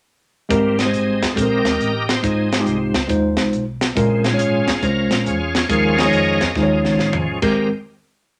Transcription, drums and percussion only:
0.51 kick loud
0.51 closed hi-hat medium
0.79 snare medium
0.79 closed hi-hat medium
0.94 closed hi-hat medium
1.22 kick medium
1.22 snare medium
1.22 closed hi-hat medium
1.37 kick loud
1.37 closed hi-hat medium
1.65 snare medium
1.65 closed hi-hat medium
1.81 closed hi-hat medium
2.09 snare loud
2.09 closed hi-hat medium
2.24 kick loud
2.24 closed hi-hat medium
2.52 snare loud
2.52 closed hi-hat medium
2.67 closed hi-hat medium
2.94 kick medium
2.94 snare loud
2.94 closed hi-hat medium
3.09 kick medium
3.09 closed hi-hat medium
3.37 snare loud
3.37 closed hi-hat medium
3.53 closed hi-hat medium
3.81 snare loud
3.81 closed hi-hat medium
3.97 kick loud
3.97 closed hi-hat medium
4.24 snare medium
4.24 closed hi-hat medium
4.39 closed hi-hat medium
4.68 kick medium
4.68 snare medium
4.68 closed hi-hat medium
4.83 kick medium
4.83 closed hi-hat medium
5.11 snare medium
5.11 closed hi-hat medium
5.26 closed hi-hat medium
5.55 snare loud
5.55 closed hi-hat medium
5.70 kick loud
5.70 closed hi-hat medium
5.98 snare loud
5.98 closed hi-hat medium
6.13 closed hi-hat medium
6.41 kick medium
6.41 snare medium
6.41 closed hi-hat medium
6.55 kick loud
6.55 snare soft
6.85 snare medium
6.99 snare medium
7.13 floor tom medium
7.42 kick loud
7.42 crash medium

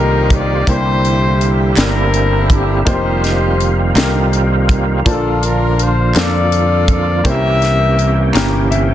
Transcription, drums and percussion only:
0.30 kick medium
0.30 closed hi-hat medium
0.67 kick loud
0.67 closed hi-hat loud
1.05 closed hi-hat medium
1.41 closed hi-hat medium
1.76 snare loud
1.76 clap medium
1.76 closed hi-hat medium
2.14 closed hi-hat soft
2.50 kick medium
2.50 closed hi-hat medium
2.87 kick loud
2.87 closed hi-hat loud
3.24 snare soft
3.24 closed hi-hat medium
3.60 closed hi-hat soft
3.96 snare loud
3.96 clap medium
3.96 closed hi-hat medium
4.33 closed hi-hat soft
4.69 kick medium
4.69 closed hi-hat soft
5.06 kick loud
5.06 closed hi-hat medium
5.43 closed hi-hat medium
5.79 closed hi-hat medium
6.14 snare loud
6.14 clap medium
6.14 closed hi-hat medium
6.52 closed hi-hat soft
6.88 kick medium
6.88 closed hi-hat medium
7.25 kick loud
7.25 closed hi-hat loud
7.62 snare soft
7.62 closed hi-hat medium
7.99 closed hi-hat soft
8.34 snare loud
8.34 clap medium
8.34 closed hi-hat medium
8.72 closed hi-hat soft

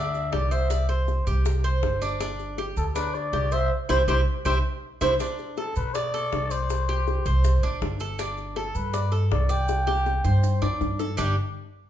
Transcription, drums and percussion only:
0.14 high bongo soft
0.14 maracas soft
0.33 high bongo medium
0.33 low bongo medium
0.33 maracas soft
0.51 high bongo soft
0.51 maracas medium
0.70 high bongo medium
0.70 maracas medium
0.89 high bongo soft
0.89 maracas soft
1.08 high bongo medium
1.08 maracas soft
1.27 high bongo soft
1.27 maracas medium
1.45 high bongo medium
1.45 maracas loud
1.64 maracas soft
1.83 high bongo medium
1.83 low bongo medium
1.83 maracas soft
2.02 high bongo soft
2.02 maracas medium
2.20 high bongo medium
2.20 maracas medium
2.39 high bongo soft
2.39 maracas soft
2.58 high bongo medium
2.58 maracas soft
2.77 maracas medium
2.96 high bongo medium
2.96 maracas medium
3.14 high bongo soft
3.14 maracas soft
3.33 high bongo medium
3.33 low bongo medium
3.33 maracas soft
3.52 high bongo soft
3.52 maracas medium
3.89 low bongo loud
3.89 maracas loud
4.08 low bongo loud
4.08 maracas medium
4.45 low bongo loud
4.45 maracas loud
5.01 low bongo loud
5.01 maracas loud
5.20 high bongo medium
5.20 maracas medium
5.38 high bongo soft
5.38 maracas soft
5.57 high bongo medium
5.57 maracas soft
5.76 maracas medium
5.95 high bongo medium
5.95 maracas loud
6.14 high bongo soft
6.14 maracas soft
6.32 high bongo medium
6.32 low bongo medium
6.32 maracas soft
6.51 high bongo soft
6.51 maracas medium
6.70 high bongo medium
6.70 maracas medium
6.88 high bongo soft
6.88 maracas soft
7.07 high bongo medium
7.07 maracas soft
7.26 high bongo soft
7.26 maracas medium
7.44 high bongo medium
7.44 maracas medium
7.63 maracas soft
7.82 high bongo medium
7.82 low bongo medium
7.82 maracas soft
8.00 high bongo soft
8.00 maracas medium
8.19 high bongo medium
8.19 maracas medium
8.37 high bongo soft
8.37 maracas soft
8.56 high bongo medium
8.56 maracas soft
8.75 maracas medium
8.94 high bongo medium
8.94 maracas medium
9.13 high bongo soft
9.13 maracas soft
9.31 high bongo medium
9.31 low bongo medium
9.31 maracas soft
9.50 high bongo soft
9.50 maracas medium
9.68 high bongo medium
9.68 maracas medium
9.87 high bongo loud
9.87 maracas soft
10.06 high bongo loud
10.06 maracas soft
10.25 low bongo medium
10.25 maracas medium
10.43 low bongo medium
10.43 maracas medium
10.62 low bongo loud
10.62 maracas soft
10.81 low bongo loud
10.81 maracas soft
11.00 low bongo loud
11.00 maracas medium
11.18 low bongo loud
11.18 maracas loud

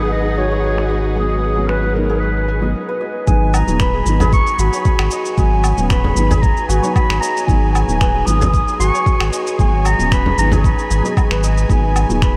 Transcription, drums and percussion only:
0.12 shaker soft
0.26 shaker soft
0.38 shaker medium
0.52 shaker soft
0.64 shaker soft
0.78 finger snap medium
0.91 shaker medium
1.05 shaker soft
1.17 shaker soft
1.43 shaker medium
1.57 shaker soft
1.69 finger snap medium
1.69 shaker soft
1.83 shaker soft
1.96 shaker medium
2.09 shaker soft
2.22 shaker soft
2.36 shaker soft
2.48 shaker medium
2.62 shaker soft
3.27 kick medium
3.27 shaker soft
3.54 low woodblock medium
3.54 shaker medium
3.68 shaker soft
3.80 finger snap medium
3.80 kick loud
3.80 shaker soft
4.06 shaker medium
4.20 frame drum loud
4.20 shaker soft
4.33 kick loud
4.33 shaker soft
4.47 shaker soft
4.59 shaker medium
4.73 shaker soft
4.85 kick loud
4.85 shaker soft
4.99 finger snap medium
4.99 low woodblock medium
4.99 shaker soft
5.11 shaker medium
5.25 shaker soft
5.38 kick loud
5.38 shaker soft
5.64 low woodblock medium
5.64 shaker medium
5.78 shaker soft
5.90 finger snap medium
5.90 kick loud
5.90 shaker soft
6.04 frame drum medium
6.17 shaker medium
6.31 frame drum loud
6.31 shaker soft
6.43 kick loud
6.43 shaker soft
6.57 shaker soft
6.70 shaker medium
6.83 shaker soft
6.96 kick loud
6.96 low woodblock medium
6.96 shaker soft
7.10 finger snap medium
7.10 shaker soft
7.23 shaker medium
7.37 shaker soft
7.48 kick loud
7.48 shaker soft
7.75 low woodblock medium
7.75 shaker medium
7.89 shaker soft
8.01 finger snap medium
8.01 kick loud
8.01 shaker soft
8.27 shaker medium
8.41 frame drum medium
8.41 shaker soft
8.54 kick loud
8.54 shaker soft
8.68 shaker soft
8.80 shaker medium
8.95 shaker soft
9.06 kick loud
9.06 shaker soft
9.20 finger snap medium
9.20 low woodblock medium
9.20 shaker soft
9.33 shaker medium
9.47 shaker soft
9.59 kick loud
9.59 shaker soft
9.85 low woodblock medium
9.85 shaker medium
10.00 shaker soft
10.12 finger snap medium
10.12 kick loud
10.12 shaker soft
10.26 frame drum medium
10.38 shaker medium
10.52 frame drum loud
10.52 shaker soft
10.64 kick loud
10.64 shaker soft
10.79 shaker soft
10.91 shaker medium
11.05 shaker soft
11.17 kick loud
11.17 low woodblock medium
11.17 shaker soft
11.31 finger snap medium
11.31 shaker soft
11.43 shaker medium
11.57 shaker soft
11.70 kick loud
11.70 shaker soft
11.96 low woodblock medium
11.96 shaker medium
12.10 shaker soft
12.22 finger snap medium
12.22 kick loud
12.22 shaker soft

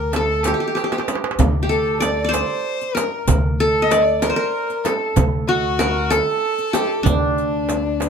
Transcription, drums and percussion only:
0.13 riq soft
0.13 darbuka tek medium
0.13 frame drum medium
0.44 riq soft
0.44 darbuka tek medium
0.44 frame drum medium
0.77 riq soft
0.77 darbuka tek medium
0.84 darbuka ka medium
0.92 riq soft
0.92 darbuka tek medium
1.00 darbuka ka medium
1.08 riq soft
1.08 darbuka tek medium
1.08 frame drum medium
1.15 darbuka ka medium
1.24 darbuka tek medium
1.31 darbuka ka medium
1.39 riq medium
1.39 darbuka dum medium
1.39 frame drum medium
1.71 riq soft
2.02 riq soft
2.02 darbuka tek medium
2.02 frame drum medium
2.34 riq soft
2.34 darbuka tek medium
2.34 frame drum medium
2.81 riq soft
2.81 darbuka ka soft
2.97 riq medium
2.97 darbuka tek medium
2.97 frame drum medium
3.27 riq medium
3.27 darbuka dum loud
3.27 frame drum medium
3.60 riq soft
3.91 riq soft
3.91 darbuka tek medium
3.91 frame drum medium
4.22 riq soft
4.22 darbuka tek medium
4.22 frame drum medium
4.70 riq soft
4.70 darbuka ka soft
4.85 riq soft
4.85 darbuka tek medium
4.85 frame drum medium
5.16 riq medium
5.16 frame drum medium
5.16 darbuka dum loud
5.48 riq soft
5.79 riq soft
5.79 darbuka tek medium
5.79 frame drum medium
6.11 riq soft
6.11 darbuka tek medium
6.11 frame drum medium
6.58 riq soft
6.58 darbuka ka soft
6.74 riq soft
6.74 darbuka tek medium
6.74 frame drum medium
7.06 riq medium
7.06 frame drum medium
7.06 darbuka dum medium
7.38 riq soft
7.38 darbuka ka soft
7.69 riq soft
7.69 darbuka tek medium
7.69 frame drum medium
8.00 riq soft
8.00 darbuka tek medium
8.00 frame drum medium

